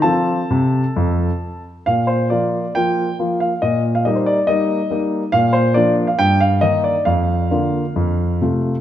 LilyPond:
<<
  \new Staff \with { instrumentName = "Grand piano" } { \time 4/4 \key bes \major \tempo 4 = 136 <a' a''>2.~ <a' a''>8 r8 | f''8 c''8 d''4 g''4. f''8 | ees''8. f''16 ees''16 c''16 d''8 ees''2 | f''8 c''8 d''8. f''16 g''8 f''8 ees''8 d''8 |
f''2.~ f''8 r8 | }
  \new Staff \with { instrumentName = "Grand piano" } { \time 4/4 \key bes \major <f c' f'>4 c4 f,4 r4 | bes,4 <f bes f'>4 <f bes f'>4 <f bes f'>4 | bes,4 <g bes ees'>4 <g bes ees'>4 <g bes ees'>4 | bes,4 <f bes d'>4 g,4 <ees bes ees'>4 |
f,4 <d bes f'>4 f,4 <c a f'>4 | }
>>